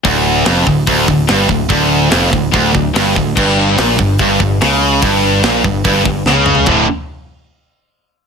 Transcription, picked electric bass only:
X:1
M:4/4
L:1/8
Q:1/4=145
K:Gm
V:1 name="Picked electric bass" clef=bass
D,,,2 F,,, D,,, D,,, D,,, G,,, D,,, | D,,,2 F,,, D,,, D,,, D,,, G,,, D,,, | G,,,2 B,,, G,,, G,,, G,,, _D,,2 | G,,,2 B,,, G,,, G,,, G,,, _D,,2 |
D,,, z6 z |]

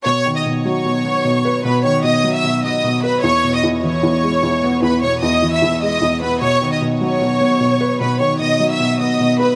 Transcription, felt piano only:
X:1
M:4/4
L:1/8
Q:1/4=151
K:B
V:1 name="Felt piano" clef=bass
B,, D, B,, F, B,, B, B,, B | B,, D, B,, F, B,, B, B,, B | E,, B,, E,, E, E,, G, E,, B, | E,, B,, E,, E, E,, G, E,, B, |
B,, D, B,, F, B,, B, B,, B | B,, D, B,, F, B,, B, B,, B |]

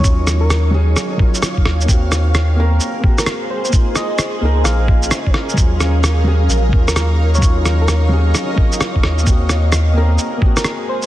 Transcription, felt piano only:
X:1
M:4/4
L:1/8
Q:"Swing 16ths" 1/4=130
K:Ebdor
V:1 name="Felt piano"
[G,DF]3 [G,DA]2 [G,DF] z2 | [B,CG]3 [B,CB]2 [B,CG]3 | [B,EF]3 [B,EB]2 [B,EF] z2 | [G,DF]3 [G,DA]2 [G,DF]3 |
[G,DF]3 [G,DA]2 [G,DF] z2 | [B,CG]3 [B,CB]2 [B,CG]3 |]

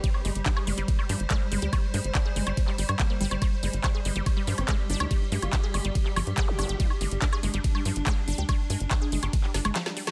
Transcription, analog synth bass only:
X:1
M:4/4
L:1/16
Q:1/4=142
K:Cm
V:1 name="Analog synth bass" clef=bass
z2 G,,, G,,, z2 G,,, G,,, z2 G,, G,,, z2 G,,, D,, | z2 G,, G,,, z2 G,,, G,,, z2 G,,, G,, z2 G,,, G,,, | z2 G,,, G,,, z2 G,,, G,,, z2 G,, G,,, z2 G,,, D,, | z2 G,, G,,, z2 G,,, G,,, z2 G,,, G,, z2 G,,, G,,, |
z2 G,,, G,,, z2 G,,, G,,, z2 G,, G,,, z2 G,,, D,, | z2 G,, G,,, z2 G,,, G,,, z2 G,,, G,,, z4 |]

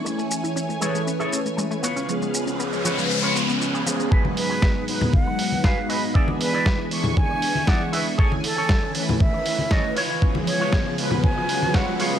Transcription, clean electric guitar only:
X:1
M:4/4
L:1/16
Q:1/4=118
K:C#mix
V:1 name="Clean electric guitar"
z6 [G=Ac]2 z [GAc] z4 [EBc]2 | z6 [EBc]2 z [EBc] z6 | [FGB] z2 [FGB] z8 [FGB] z [FGB] z | [=EG=d] z2 [EGd] z8 [EGd] z [EGB] z |
[G=Ac] z2 [GAc] z8 [GAc] z [EBc]2- | [EBc] z2 [EBc] z8 [EBc] z [EBc] z |]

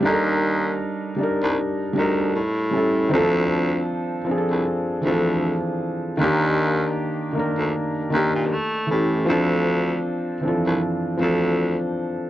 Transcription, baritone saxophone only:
X:1
M:4/4
L:1/16
Q:"Swing 16ths" 1/4=78
K:Dphr
V:1 name="Baritone saxophone" clef=bass
E,,4 z3 C,, z2 D,,2 A,,4 | D,,4 z3 C,, z2 D,,3 z3 | E,,4 z3 D,, z2 E,, B,, A,2 A,,2 | D,,4 z3 C,, z2 D,,3 z3 |]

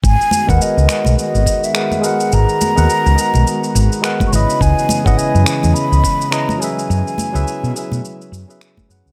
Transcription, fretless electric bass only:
X:1
M:4/4
L:1/16
Q:"Swing 16ths" 1/4=105
K:G#m
V:1 name="Fretless electric bass" clef=bass
G,,, z2 D,, z C,, z B,,, z G,,, z6 | G,,, z2 D,, z C,, z B,,, z2 G,,, z3 G,,, z | C,, z2 G,,, z F,, z E,, z C,, z6 | F,, z2 C,, z B,, z B,, z2 F,, z3 F,, C,, |]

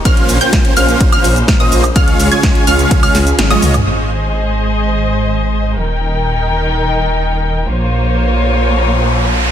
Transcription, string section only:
X:1
M:4/4
L:1/8
Q:1/4=126
K:Ab
V:1 name="String section"
[D,B,c]8 | [D,DFA]8 | [A,Ace]8 | [E,EBg]8 |
[B,Fcd]8 |]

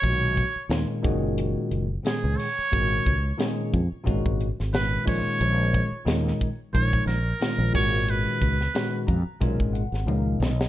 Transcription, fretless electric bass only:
X:1
M:4/4
L:1/16
Q:"Swing 16ths" 1/4=90
K:G#dor
V:1 name="Fretless electric bass" clef=bass
B,,,3 z D,, z F,,,4 F,,,2 z C,, z2 | G,,,2 C,,2 z2 E,, z G,,, G,,,2 G,,,3 A,,, z | A,,,3 z D,,2 z2 A,,,2 A,,,2 z A,,, G,,,2- | G,,,2 C,,2 z2 E,, z B,,, G,,,2 G,,, C,,2 B,,,2 |]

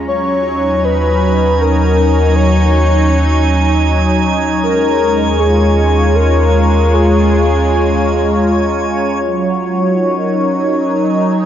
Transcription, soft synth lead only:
X:1
M:3/4
L:1/8
Q:1/4=79
K:Ebm
V:1 name="Soft synth lead"
d2 c2 B2 | d3 z3 | B2 A2 B2 | A4- A z |
z6 |]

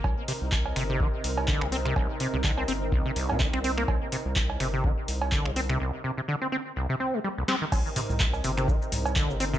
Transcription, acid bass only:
X:1
M:4/4
L:1/16
Q:"Swing 16ths" 1/4=125
K:Cm
V:1 name="Acid bass" clef=bass
z2 C, z3 C, C, E, z3 D, C, C C, | C,, z C, C, D, C C z C,, C, C,, C, E, C C B, | z2 C, z3 C, C, E, z3 D, C, C C, | C,, z C, C, D, C C z C,, C, C G, G, C,, C E, |
z2 C, z3 C, C, E, z3 D, C, C C, |]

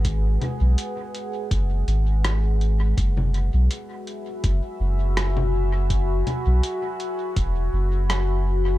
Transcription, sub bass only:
X:1
M:4/4
L:1/16
Q:"Swing 16ths" 1/4=82
K:G#m
V:1 name="Sub bass" clef=bass
G,,,2 z B,,, z4 F,,,2 G,,,6 | F,,,3 B,,, z4 F,,, z F,,,6- | F,,,2 z B,,, z4 E,,,2 F,,,6 |]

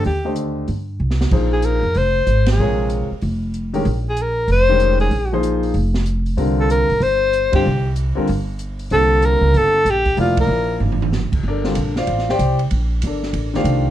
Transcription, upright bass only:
X:1
M:4/4
L:1/8
Q:"Swing" 1/4=190
K:Cdor
V:1 name="Upright bass" clef=bass
E,,4 G,,2 C,,2 | [K:Cphr] B,,,3 F,, F,,,2 A,,,2 | B,,,3 z F,,,4 | B,,,4 F,,,4 |
B,,,4 F,,,4 | C,,3 _C,, G,,,3 G,, | C,,3 z G,,,4 | C,,3 D,, G,,,2 B,,,2 |
F,,,2 B,,,2 G,,,3 _G,,, | [K:Gm] G,,,2 B,,,2 A,,,2 C,,2 | B,,,2 G,,,2 A,,,2 C,,2 |]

